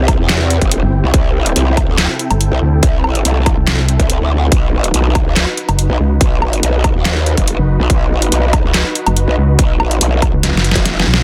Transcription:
0.00 0.17 C2 loud
0.00 4.48 C3 medium
0.00 4.48 C4 medium
0.00 4.48 E4 medium
0.00 1.10 G4 medium
0.00 4.48 G5 medium
0.08 kick loud
0.08 closed hi-hat medium
0.08 low woodblock medium
0.19 0.60 E2 loud
0.29 snare loud
0.29 clap medium
0.29 closed hi-hat medium
0.50 closed hi-hat medium
0.61 0.81 G1 loud
0.61 kick medium
0.61 closed hi-hat medium
0.71 closed hi-hat medium
0.83 1.02 G1 loud
1.04 1.12 C2 loud
1.14 1.54 C2 loud
1.14 4.49 A4 medium
1.14 kick loud
1.14 closed hi-hat medium
1.46 closed hi-hat medium
1.56 1.86 C2 loud
1.56 closed hi-hat medium
1.77 kick loud
1.77 closed hi-hat medium
1.77 low woodblock soft
1.88 2.08 D2 loud
1.98 snare loud
1.98 clap medium
1.98 closed hi-hat medium
2.19 closed hi-hat medium
2.30 2.50 G1 medium
2.30 closed hi-hat medium
2.30 low woodblock medium
2.41 closed hi-hat medium
2.52 2.60 C2 loud
2.62 2.81 D2 loud
2.83 3.23 C2 medium
2.83 kick loud
2.83 closed hi-hat medium
3.04 low woodblock medium
3.15 closed hi-hat medium
3.25 3.56 C2 loud
3.25 closed hi-hat medium
3.46 kick loud
3.46 closed hi-hat soft
3.46 low woodblock medium
3.57 3.98 C2 loud
3.67 snare loud
3.67 clap medium
3.67 closed hi-hat medium
3.88 closed hi-hat medium
3.99 4.19 C2 loud
3.99 kick medium
3.99 closed hi-hat medium
4.10 closed hi-hat medium
4.21 4.50 D2 loud
4.52 4.92 B1 medium
4.52 11.23 D#4 medium
4.52 11.23 F#4 medium
4.52 11.23 B4 medium
4.52 kick loud
4.52 closed hi-hat medium
4.84 closed hi-hat medium
4.94 5.25 B1 loud
4.94 closed hi-hat medium
5.15 kick loud
5.15 closed hi-hat medium
5.15 low woodblock medium
5.26 5.46 C#2 loud
5.36 snare loud
5.36 clap medium
5.36 closed hi-hat medium
5.57 closed hi-hat medium
5.68 5.88 F#1 loud
5.68 closed hi-hat medium
5.68 low woodblock medium
5.79 closed hi-hat medium
5.90 5.98 B1 loud
6.00 6.19 C#2 loud
6.21 6.61 B1 medium
6.21 kick loud
6.21 closed hi-hat medium
6.42 low woodblock medium
6.53 closed hi-hat medium
6.63 6.94 B1 medium
6.63 closed hi-hat medium
6.84 kick loud
6.84 closed hi-hat medium
6.84 low woodblock medium
6.95 7.36 D#2 loud
7.05 snare loud
7.05 clap medium
7.05 closed hi-hat medium
7.26 closed hi-hat medium
7.37 7.57 F#1 loud
7.37 kick medium
7.37 closed hi-hat medium
7.48 closed hi-hat medium
7.59 7.78 F#1 loud
7.80 7.88 B1 loud
7.90 8.30 B1 medium
7.90 kick loud
7.90 closed hi-hat medium
8.22 closed hi-hat medium
8.32 8.63 B1 loud
8.32 closed hi-hat medium
8.53 kick loud
8.53 closed hi-hat medium
8.53 low woodblock medium
8.64 8.84 C#2 loud
8.74 snare loud
8.74 clap medium
8.74 closed hi-hat medium
8.95 closed hi-hat medium
9.06 9.26 F#1 medium
9.06 closed hi-hat medium
9.06 low woodblock medium
9.17 closed hi-hat medium
9.28 9.36 B1 loud
9.38 9.57 C#2 loud
9.59 9.99 B1 loud
9.59 kick loud
9.59 closed hi-hat medium
9.80 low woodblock medium
9.91 closed hi-hat medium
10.01 10.32 B1 loud
10.01 closed hi-hat medium
10.22 kick loud
10.22 closed hi-hat medium
10.22 low woodblock medium
10.33 10.53 C#2 loud
10.43 snare medium
10.43 closed hi-hat medium
10.54 10.74 F#1 loud
10.54 snare medium
10.64 closed hi-hat medium
10.71 snare medium
10.76 11.05 F#1 loud
10.76 kick medium
10.76 closed hi-hat medium
10.86 snare medium
10.86 closed hi-hat medium
11.00 snare loud
11.07 11.23 B1 loud
11.14 snare loud

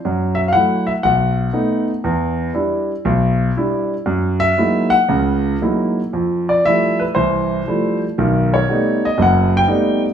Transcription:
0.05 0.49 F#2 medium
0.05 0.48 F#3 medium
0.35 0.40 E5 medium
0.48 0.53 F5 medium
0.53 0.90 F#3 soft
0.53 0.90 A3 soft
0.53 0.90 E4 medium
0.53 0.85 F#5 medium
0.87 0.92 E5 medium
1.03 1.48 B1 medium
1.03 1.84 F#5 medium
1.53 1.90 A3 medium
1.53 1.90 B3 soft
1.53 1.90 D#4 medium
2.04 2.48 E2 medium
2.54 2.90 G3 soft
2.54 2.91 D4 soft
2.54 2.91 E4 medium
3.05 3.49 B1 medium
3.57 3.93 G3 medium
3.57 3.93 D4 soft
3.57 3.93 E4 medium
4.06 4.51 F#2 medium
4.40 4.94 E5 loud
4.58 4.94 F#3 medium
4.58 4.95 G#3 soft
4.58 4.95 A#3 soft
4.58 4.95 D#4 soft
4.58 4.95 E4 soft
4.90 5.56 F#5 loud
5.09 5.54 C#2 medium
5.09 5.54 C#3 medium
5.62 5.99 F#3 soft
5.62 5.99 G#3 soft
5.62 5.99 A#3 soft
5.62 5.99 D#4 soft
5.62 5.99 E4 medium
6.13 6.58 F2 medium
6.49 6.65 D5 medium
6.65 7.02 F3 soft
6.65 7.02 G3 soft
6.65 7.02 A3 soft
6.65 7.02 E4 medium
6.65 7.01 E5 medium
7.00 7.05 B4 medium
7.15 7.60 C2 medium
7.15 7.60 E3 medium
7.15 7.97 C5 medium
7.67 8.03 F3 soft
7.67 8.03 G3 soft
7.67 8.04 A3 soft
7.67 8.04 E4 medium
8.18 8.62 B1 medium
8.18 8.62 D#3 medium
8.54 9.05 C#5 medium
8.69 9.05 G3 soft
8.69 9.05 A3 soft
8.69 9.05 B3 soft
8.69 9.05 D#4 medium
9.05 9.21 D#5 medium
9.18 9.63 F#1 medium
9.18 9.62 F#2 medium
9.22 9.56 F#5 medium
9.57 10.02 G5 loud
9.68 10.04 G3 medium
9.68 10.04 A3 soft
9.68 10.05 B3 soft
9.68 10.05 D#4 medium

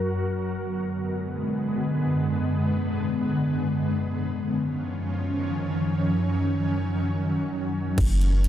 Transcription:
0.00 4.22 F#2 medium
0.00 0.50 F#3 medium
0.00 0.50 F#4 medium
0.00 0.50 A#4 medium
0.53 4.22 D3 medium
0.53 4.22 G#3 medium
0.53 4.22 B3 medium
4.26 7.94 F#2 medium
4.26 7.94 D#3 medium
4.26 6.10 F3 medium
4.26 7.94 C#4 medium
6.12 7.96 F#3 medium
7.98 8.48 F#1 loud
7.98 8.48 F#3 medium
7.98 8.48 C#4 medium
7.98 8.48 F4 medium
7.98 8.48 A#4 medium
7.98 kick loud
7.98 closed hi-hat medium
7.98 crash medium
8.21 closed hi-hat medium
8.44 closed hi-hat medium

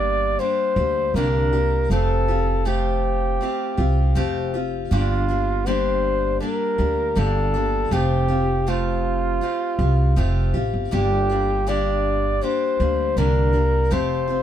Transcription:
0.00 0.35 G1 medium
0.00 0.40 G2 medium
0.00 0.40 D3 soft
0.00 0.39 G3 medium
0.00 0.39 A#3 medium
0.00 0.39 D4 medium
0.00 0.41 G4 medium
0.00 0.41 D5 medium
0.39 0.77 G3 soft
0.39 0.78 A#3 soft
0.39 0.77 D4 soft
0.39 0.76 G4 soft
0.39 1.17 C5 medium
0.76 1.13 D2 medium
0.76 1.15 G3 soft
0.76 1.15 A#3 soft
0.76 1.15 D4 soft
0.76 1.15 G4 soft
1.14 1.86 C2 medium
1.14 1.53 G2 soft
1.14 1.53 D3 medium
1.14 1.53 G3 medium
1.14 1.53 A#3 medium
1.14 1.53 D4 medium
1.14 1.51 G4 medium
1.14 1.90 A#4 medium
1.53 1.91 G3 soft
1.53 1.91 A#3 soft
1.53 1.91 D4 soft
1.53 1.90 G4 soft
1.90 3.37 F1 medium
1.90 2.28 F3 medium
1.90 2.29 A3 medium
1.90 2.29 C4 medium
1.90 2.28 F4 medium
1.90 2.27 G4 medium
1.90 2.68 A4 medium
2.28 2.65 C4 soft
2.28 2.66 F4 soft
2.28 2.66 G4 soft
2.65 3.41 F3 medium
2.65 3.39 A3 medium
2.65 3.41 C4 medium
2.65 3.42 F4 medium
2.65 4.55 G4 medium
2.65 3.43 G4 medium
3.41 3.78 A3 soft
3.41 3.79 C4 soft
3.41 3.77 F4 soft
3.41 3.76 G4 medium
3.77 4.14 C2 medium
3.77 4.15 C4 soft
3.77 4.15 F4 soft
3.77 4.16 G4 soft
4.15 4.87 F1 medium
4.15 4.53 F3 medium
4.15 4.54 A3 medium
4.15 4.54 C4 medium
4.15 4.54 F4 medium
4.15 4.53 G4 medium
4.54 4.92 C4 soft
4.54 4.92 F4 soft
4.54 4.91 G4 soft
4.91 6.38 G1 medium
4.91 5.29 G2 medium
4.91 5.29 D3 medium
4.91 5.29 G3 medium
4.91 5.29 A#3 medium
4.91 5.28 D4 medium
4.91 5.68 F4 medium
4.91 5.27 G4 medium
5.28 5.65 G3 soft
5.28 5.66 A#3 soft
5.28 5.66 D4 soft
5.28 5.66 G4 soft
5.66 6.42 G2 medium
5.66 6.42 D3 medium
5.66 6.40 G3 medium
5.66 6.41 A#3 medium
5.66 6.41 D4 medium
5.66 6.43 G4 medium
5.66 6.40 C5 medium
6.40 6.79 G3 soft
6.40 6.79 A#3 soft
6.40 6.78 D4 soft
6.40 6.77 G4 soft
6.40 7.20 A#4 medium
6.78 7.15 D2 medium
6.78 7.16 G3 soft
6.78 7.16 A#3 soft
6.78 7.16 D4 soft
6.78 7.16 G4 soft
7.15 7.88 G1 medium
7.15 7.54 G2 soft
7.15 7.54 D3 medium
7.15 7.54 G3 medium
7.15 7.55 A#3 medium
7.15 7.53 D4 medium
7.15 7.53 G4 medium
7.15 7.94 A4 medium
7.54 7.92 G3 soft
7.54 7.92 A#3 soft
7.54 7.92 D4 soft
7.54 7.92 G4 soft
7.91 9.38 F1 medium
7.91 8.29 F3 medium
7.91 8.30 A3 medium
7.91 8.30 C4 medium
7.91 8.28 F4 medium
7.91 8.70 G4 medium
7.91 8.27 G4 medium
8.28 8.66 C4 soft
8.28 8.67 F4 soft
8.28 8.67 G4 soft
8.67 9.42 F3 medium
8.67 9.40 A3 medium
8.67 9.41 C4 medium
8.67 9.42 F4 medium
8.67 10.56 F4 medium
8.67 9.43 G4 medium
9.41 9.79 A3 soft
9.41 9.80 C4 soft
9.41 9.79 F4 soft
9.41 9.78 G4 soft
9.79 10.15 C2 medium
9.79 10.16 C4 soft
9.79 10.17 F4 soft
9.79 10.17 G4 soft
10.16 10.53 F1 medium
10.16 10.54 F3 medium
10.16 10.55 A3 medium
10.16 10.55 C4 medium
10.16 10.54 F4 medium
10.16 10.53 G4 medium
10.54 10.72 A1 medium
10.54 10.92 C4 soft
10.54 10.92 F4 soft
10.54 10.92 G4 soft
10.73 10.90 G1 medium
10.91 12.39 G1 medium
10.91 11.29 G2 medium
10.91 11.30 D3 medium
10.91 11.30 G3 medium
10.91 11.30 A#3 medium
10.91 11.30 D4 medium
10.91 11.28 G4 medium
10.91 11.71 G4 medium
11.29 11.66 G3 soft
11.29 11.66 A#3 soft
11.29 11.67 D4 soft
11.29 11.67 G4 soft
11.67 12.42 G2 medium
11.67 12.42 D3 medium
11.67 12.41 G3 medium
11.67 12.41 A#3 medium
11.67 12.42 D4 medium
11.67 12.43 G4 medium
11.67 12.44 D5 medium
12.41 12.79 G3 soft
12.41 12.80 A#3 soft
12.41 12.79 D4 soft
12.41 12.79 G4 medium
12.41 13.19 C5 medium
12.80 13.16 D2 medium
12.80 13.16 G3 soft
12.80 13.17 A#3 soft
12.80 13.17 D4 soft
12.80 13.17 G4 soft
13.17 13.88 C2 medium
13.17 13.55 G2 medium
13.17 13.55 D3 medium
13.17 13.55 G3 medium
13.17 13.53 A#3 medium
13.17 13.53 D4 medium
13.17 13.52 G4 medium
13.17 13.94 A#4 medium
13.53 13.91 G3 soft
13.53 13.91 A#3 soft
13.53 13.91 D4 soft
13.53 13.91 G4 soft
13.91 14.43 F1 medium
13.91 14.29 F3 medium
13.91 14.29 A3 medium
13.91 14.29 C4 medium
13.91 14.28 F4 medium
13.91 14.26 G4 medium
13.91 14.43 C5 medium
14.28 14.43 C4 soft
14.28 14.43 F4 soft
14.28 14.43 G4 soft

